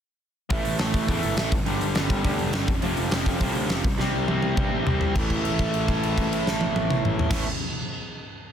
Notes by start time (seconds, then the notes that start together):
0.50 A1 A2 E3 A3, kick, open hi-hat
0.65 A1, open hi-hat
0.79 A1 A2 E3 A3, snare, open hi-hat
0.94 A1, kick, open hi-hat
1.08 E2 A2 E3 A3, kick, open hi-hat
1.23 G1, open hi-hat
1.37 A1 A2 E3 A3, snare, open hi-hat
1.52 G1, kick, open hi-hat
1.66 G1 G2 D3 G3, open hi-hat
1.81 G1, open hi-hat
1.95 G1 G2 D3 G3, snare, open hi-hat
2.10 G1, kick, open hi-hat
2.24 D2 G2 D3 G3, kick, open hi-hat
2.39 F1, open hi-hat
2.53 G1 G2 D3 G3, snare, open hi-hat
2.68 F1, kick, open hi-hat
2.82 F1 F2 C3 F3, open hi-hat
2.97 F1, open hi-hat
3.11 F1 F2 C3 F3, snare, open hi-hat
3.26 F1, kick, open hi-hat
3.41 C2 F2 C3 F3, kick, open hi-hat
3.55 D2, open hi-hat
3.69 F1 F2 C3 F3, snare, open hi-hat
3.84 C2, kick, open hi-hat
3.99 C2 C3 G3 C4, snare
4.14 C2
4.28 C2 C3 G3 C4, high tom
4.42 C2, high tom
4.57 G2 C3 G3 C4, kick, mid tom
4.73 A1
4.87 C2 C3 G3 C4, floor tom
5.01 C2, floor tom
5.14 A1 A2 E3, kick, crash
5.18 A3
5.30 kick, crash
5.45 crash
5.59 kick, crash
5.74 crash
5.88 kick, crash
6.03 crash
6.18 kick, crash
6.33 crash
6.47 snare
6.61 high tom
6.76 high tom
6.90 mid tom
7.05 mid tom
7.19 floor tom
7.29 A1 A2 E3, kick, snare, crash
7.33 A3